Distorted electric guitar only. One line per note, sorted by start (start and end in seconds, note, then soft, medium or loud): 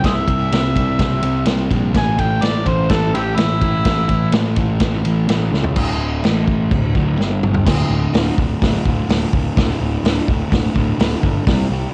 0.03 0.26 C3 loud
0.03 0.27 G3 loud
0.03 0.29 C4 loud
0.28 0.50 C3 medium
0.28 0.51 G3 medium
0.28 0.53 C4 medium
0.51 0.75 C3 medium
0.51 0.76 G3 medium
0.51 0.78 C4 loud
0.76 0.98 C3 medium
0.76 0.99 G3 medium
0.76 1.00 C4 medium
0.99 1.21 C3 loud
0.99 1.23 G3 loud
0.99 1.24 C4 loud
1.23 1.46 C3 medium
1.23 1.46 G3 loud
1.23 1.49 C4 medium
1.47 1.69 C3 medium
1.47 1.70 G3 medium
1.47 1.72 C4 loud
1.70 1.93 C3 medium
1.70 1.94 G3 medium
1.70 1.95 C4 loud
1.94 2.16 A2 loud
1.94 2.18 E3 medium
1.94 2.18 A3 loud
2.17 2.40 A2 medium
2.17 2.40 E3 medium
2.17 2.41 A3 medium
2.41 2.65 A2 medium
2.41 2.66 E3 medium
2.41 2.67 A3 medium
2.66 2.86 A2 medium
2.66 2.88 E3 medium
2.66 2.89 A3 loud
2.87 3.11 A2 medium
2.87 3.12 E3 loud
2.87 3.14 A3 loud
3.12 3.35 A2 medium
3.12 3.37 E3 medium
3.12 3.38 A3 loud
3.36 3.59 A2 medium
3.36 3.60 E3 medium
3.36 3.62 A3 medium
3.60 3.83 A2 medium
3.60 3.84 E3 loud
3.60 3.85 A3 loud
3.84 4.07 A2 loud
3.84 4.08 E3 loud
3.84 4.09 A3 loud
4.08 4.32 A2 medium
4.08 4.34 E3 medium
4.08 4.35 A3 medium
4.33 4.57 A2 medium
4.33 4.58 E3 medium
4.33 4.58 A3 medium
4.58 4.81 A2 medium
4.58 4.81 E3 medium
4.58 4.82 A3 loud
4.82 5.04 A2 loud
4.82 5.06 E3 loud
4.82 5.06 A3 loud
5.05 5.27 A2 medium
5.05 5.29 E3 medium
5.05 5.29 A3 loud
5.28 5.50 A2 medium
5.28 5.52 E3 medium
5.28 5.53 A3 loud
5.51 5.74 A2 medium
5.51 5.75 E3 loud
5.51 5.76 A3 loud
5.75 6.23 D2 loud
5.75 6.22 A2 loud
5.75 6.24 D3 loud
6.23 6.71 A2 medium
6.23 6.72 E3 medium
6.23 6.72 A3 medium
6.72 6.91 D2 medium
6.72 6.91 A2 medium
6.96 7.18 D2 loud
6.96 7.19 A2 loud
6.96 7.19 D3 loud
7.18 7.65 G2 medium
7.18 7.67 D3 medium
7.18 7.67 G3 loud
7.66 8.13 D2 loud
7.66 7.94 A2 loud
7.71 7.90 D3 loud
7.90 8.19 D3 medium
7.96 8.15 A2 medium
8.14 8.60 D2 medium
8.14 8.42 A2 loud
8.19 8.38 D3 loud
8.38 8.64 D3 medium
8.43 8.62 A2 medium
8.61 8.89 D2 medium
8.61 8.88 A2 medium
8.66 8.84 D3 loud
8.85 9.09 A2 medium
8.85 9.11 D3 loud
8.90 9.07 D2 medium
9.08 9.55 D2 medium
9.08 9.35 A2 medium
9.13 9.31 D3 medium
9.32 9.59 D3 medium
9.36 9.57 A2 medium
9.56 10.02 D2 loud
9.56 9.84 A2 loud
9.61 9.79 D3 loud
9.80 10.07 D3 medium
9.85 10.05 A2 medium
10.04 10.49 D2 loud
10.04 10.32 A2 medium
10.09 10.27 D3 loud
10.28 10.54 D3 medium
10.33 10.52 A2 medium
10.50 10.78 D2 medium
10.50 10.76 A2 medium
10.55 10.73 D3 medium
10.74 10.99 A2 medium
10.74 11.01 D3 loud
10.79 10.96 D2 medium
10.97 11.45 D2 medium
10.97 11.25 A2 medium
11.02 11.20 D3 medium
11.21 11.45 D3 medium
11.26 11.47 A2 medium
11.45 11.91 C3 medium
11.45 11.73 G3 loud
11.50 11.68 C4 loud
11.69 11.94 C4 medium
11.74 11.93 G3 medium